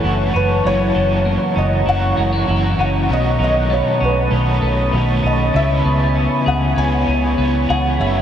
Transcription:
Already playing: clean electric guitar F#2 A3 C#4, felt piano A4, ambient pad C#5 F#5 A5
0.02 fingered electric bass F#1, overdriven electric guitar E3 A3 C#4, clean electric guitar E3
0.06 overdriven electric guitar F#4
0.34 fingered electric bass F#1, clean electric guitar C#4, felt piano B4
0.63 fingered electric bass F#1, overdriven electric guitar F#2 C#3 E3, clean electric guitar F#2, felt piano C#5, ambient pad A#5
0.68 overdriven electric guitar A#3 E4 F#4
0.95 fingered electric bass F#1, clean electric guitar E3
1.25 clean electric guitar A#3
1.56 fingered electric bass F#1, clean electric guitar C#4, felt piano D#5
1.85 fingered electric bass F#1, overdriven electric guitar E3 A#3 E4, clean electric guitar E3, felt piano F#5
1.89 overdriven electric guitar F#4
2.17 fingered electric bass F#1, clean electric guitar G#3
2.33 clean electric guitar A#3
2.46 fingered electric bass F#1, overdriven electric guitar E3 A#3 E4, clean electric guitar E3
2.51 overdriven electric guitar F#4
2.78 fingered electric bass F#1, clean electric guitar C#4, felt piano F#5
3.08 fingered electric bass B1, overdriven electric guitar B2 D#3 F#3 A3 C#4 F#4, clean electric guitar B2, ambient pad A5 B5 D#6
3.13 felt piano D#5
3.38 fingered electric bass B1, clean electric guitar D#3, overdriven electric guitar A3 C#4 F#4
3.43 overdriven electric guitar F#3, felt piano D#5
3.70 clean electric guitar A3, felt piano C#5
4.00 fingered electric bass B1, clean electric guitar C#4, felt piano B4
4.31 fingered electric bass B1, clean electric guitar D#3, overdriven electric guitar F#3 A3 C#4
4.35 overdriven electric guitar F#4
4.62 fingered electric bass B1, clean electric guitar A3
4.92 fingered electric bass B1, clean electric guitar D#3, overdriven electric guitar F#3 A3
4.96 overdriven electric guitar C#4 F#4
5.23 fingered electric bass B1, clean electric guitar C#4, felt piano D#5
5.53 fingered electric bass C#2, overdriven electric guitar C#3 E3, clean electric guitar C#3, ambient pad C#5 G#5, felt piano E5
5.57 overdriven electric guitar B3 C#4 G#4
5.85 fingered electric bass C#2, clean electric guitar B3
6.15 clean electric guitar C#4
6.46 fingered electric bass C#2, clean electric guitar G#4, felt piano F#5
6.76 fingered electric bass C#2, overdriven electric guitar E3 B3 C#4, clean electric guitar B3, felt piano G#5
6.82 overdriven electric guitar G#4
7.07 fingered electric bass C#2, clean electric guitar C#4
7.38 fingered electric bass C#2, overdriven electric guitar E3 B3 C#4, clean electric guitar B3
7.42 overdriven electric guitar G#4
7.69 fingered electric bass C#2, clean electric guitar G#4, felt piano F#5
7.99 fingered electric bass F#1, overdriven electric guitar F#2 C#3 E3 A3 C#4 F#4, clean electric guitar F#2, felt piano E5

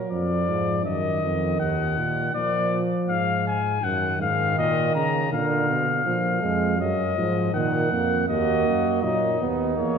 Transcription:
Already playing: trombone F#3
0.10 bass trombone F2, trombone F3, trumpet D5
0.49 bass trombone G#2
0.85 bass trombone F#2, trombone D#3, trumpet D#5
1.22 bass trombone F2
1.60 bass trombone D#2, trumpet F#5
1.97 bass trombone A#2
2.34 bass trombone A#2, trombone F3, trumpet D5
3.08 bass trombone G#2, trumpet F5
3.47 trumpet G#5
3.82 bass trombone F#2, trombone D#3, trumpet F#5
4.21 bass trombone G#2, trumpet F5
4.59 bass trombone A#2, trumpet D#5
4.95 bass trombone C#3, trumpet A#5
5.32 bass trombone A#2, trombone D3, trumpet F5
5.69 bass trombone B2
6.06 bass trombone A#2, trombone F3
6.42 bass trombone F2, trombone G#3
6.79 bass trombone F#2, trombone F#3, trumpet D#5
7.17 bass trombone G#2, trombone F3
7.53 bass trombone A#2, trombone D#3, trumpet F#5
7.91 bass trombone F2, trombone A#3
8.28 bass trombone D#2, trombone A#3, flugelhorn F#4, trumpet D#5
8.67 bass trombone F#2
9.02 bass trombone A#2, trombone F#3, flugelhorn D#4, trumpet D#5
9.40 bass trombone D#2, trombone B3
9.77 bass trombone E2, trombone A#3, trumpet C#5

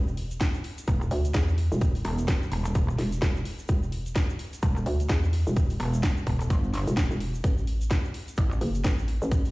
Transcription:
Already playing: fm bass E1
0.07 shaker
0.17 open hi-hat
0.31 closed hi-hat, shaker
0.41 kick, snare, closed hi-hat, shaker
0.54 shaker
0.64 open hi-hat
0.78 closed hi-hat, shaker
0.88 wobble bass E1, kick, closed hi-hat, shaker
1.02 shaker
1.11 fm bass D2, open hi-hat
1.25 closed hi-hat, shaker
1.34 fm bass E2, kick, snare, closed hi-hat, shaker
1.48 shaker
1.58 open hi-hat
1.72 fm bass E1, shaker
1.81 kick, closed hi-hat, shaker
1.95 open hi-hat, shaker
2.05 wobble bass E1, open hi-hat
2.18 closed hi-hat, shaker
2.28 kick, snare, closed hi-hat, shaker
2.43 shaker
2.52 wobble bass E1, open hi-hat
2.65 closed hi-hat, shaker
2.75 wobble bass E1, kick, closed hi-hat, shaker
2.90 shaker
2.98 fm bass E1, snare, open hi-hat
3.12 closed hi-hat, shaker
3.22 fm bass E1, kick, snare, closed hi-hat, shaker
3.36 shaker
3.45 open hi-hat
3.59 shaker
3.68 fm bass E1, kick, closed hi-hat, shaker
3.83 shaker
3.92 open hi-hat
4.06 closed hi-hat, shaker
4.16 kick, snare, closed hi-hat, shaker
4.29 shaker
4.39 open hi-hat
4.53 closed hi-hat, shaker
4.62 wobble bass E1, kick, closed hi-hat, shaker
4.77 shaker
4.86 fm bass D2, open hi-hat
5.00 closed hi-hat, shaker
5.09 fm bass E2, kick, snare, closed hi-hat, shaker
5.24 shaker
5.33 open hi-hat
5.47 fm bass E1, shaker
5.56 kick, closed hi-hat, shaker
5.70 open hi-hat, shaker
5.80 wobble bass E1, open hi-hat
5.94 closed hi-hat, shaker
6.03 kick, snare, closed hi-hat, shaker
6.17 shaker
6.27 wobble bass E1, kick, open hi-hat
6.41 closed hi-hat, shaker
6.50 wobble bass G1, kick, closed hi-hat, shaker
6.64 shaker
6.73 snare, open hi-hat
6.87 fm bass E1, closed hi-hat, shaker
6.97 kick, snare, closed hi-hat, shaker
7.11 fm bass E1, shaker
7.20 open hi-hat
7.34 shaker
7.44 fm bass A1, kick, closed hi-hat, shaker
7.58 shaker
7.67 open hi-hat
7.81 closed hi-hat, shaker
7.91 kick, snare, closed hi-hat, shaker
8.05 shaker
8.14 open hi-hat
8.28 closed hi-hat, shaker
8.37 wobble bass A1, kick, closed hi-hat, shaker
8.51 shaker
8.61 fm bass F#1, open hi-hat
8.75 closed hi-hat, shaker
8.84 fm bass A1, kick, snare, closed hi-hat, shaker
8.98 shaker
9.08 open hi-hat
9.22 fm bass A1, shaker
9.31 kick, closed hi-hat, shaker
9.45 open hi-hat, shaker

